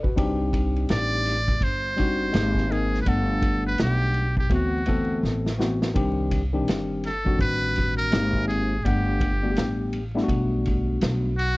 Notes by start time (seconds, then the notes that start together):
0.03 F#4 B4, muted upright bass stroke, kick
0.16 C2 G3 C4 D4 D#4 G4, kick, ride
0.53 kick, ride
0.76 ride
0.89 A1 D5, snare, hi-hat pedal, ride
1.25 snare, ride
1.48 kick, ride
1.61 G1 C5, kick, ride
1.97 G3 C4 D4 D#4 F#4, kick, ride
2.32 G#1 G#3 A#3 C4 D#4 G4, snare, hi-hat pedal, ride
2.55 kick, snare
2.70 G#3 A#3 C4 D#4 G#4 A#4, ride
2.94 snare
3.02 G3 B4
3.06 G1 A3 B3 D4 A4 F#5, kick, ride
3.42 kick, ride
3.67 B4
3.78 B1 G4, snare, hi-hat pedal, ride
4.14 ride
4.37 G4, kick
4.49 D2 E3 A3 B3 C4 F#4, kick, ride
4.55 F#4
4.86 E3 A3 B3 C4 A4, kick, ride
5.23 A1, snare
5.46 snare
5.58 E3 A3 B3 C4 F#4, snare
5.82 snare
5.94 C2 D#3 G3 C4 D4 G4, kick, ride
6.31 kick, ride
6.53 D#3 G3 C4 D4 G4
6.67 G1, snare, hi-hat pedal, ride
7.04 A4, snare, ride
7.25 D#3 G3 C4 D4 F#4, kick
7.39 A1 B4, kick, ride
7.76 kick, ride
7.97 A#4, ride
8.11 G#1 G#3 A#3 C4 D#4 G4, snare, hi-hat pedal, ride
8.33 kick
8.48 G#4, ride
8.84 G1 G3 A3 B3 D4 G4 F#5, kick, ride
9.21 kick, ride
9.43 G3 A3 B3 D4 F#4
9.51 G4
9.56 A1, snare, hi-hat pedal, ride
9.93 ride
10.15 G3 A3 B3 D4 E4, snare
10.24 F#4
10.28 B1, kick, ride
10.66 kick, ride
11.01 B1, snare, hi-hat pedal, ride
11.38 F#4, ride